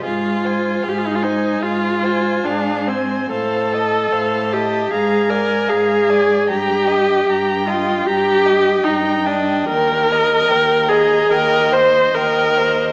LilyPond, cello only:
\new Staff \with { instrumentName = "Cello" } { \clef bass \time 4/4 \key ees \major \tempo 4 = 75 aes,4 aes,4 aes,4 aes,4 | a,4 a,4 aes,4 aes,4 | g,4 g,4 g,4 g,4 | ees,4 ees,4 ees,4 ees,4 | }